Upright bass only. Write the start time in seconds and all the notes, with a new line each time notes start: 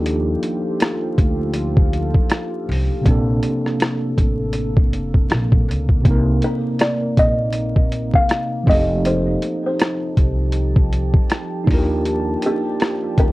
Already playing: D#2
1.18 D2
2.69 C2
3.06 A#1
4.18 A1
4.93 F1
5.31 A#1
5.68 C#2
6.05 C2
7.17 A#1
8.68 F1
10.17 C2
11.68 D#2
13.18 D2